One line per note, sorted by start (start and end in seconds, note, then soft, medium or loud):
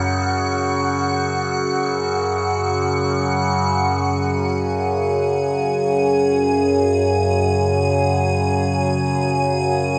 0.00 3.74 F#2 medium
0.00 3.75 C#3 medium
0.00 3.80 F#5 medium
3.75 9.99 F#2 medium
3.75 9.99 C#3 medium
3.75 9.99 F#4 medium
3.75 9.99 G#5 medium
5.38 9.99 C#5 medium
7.62 9.99 G#5 medium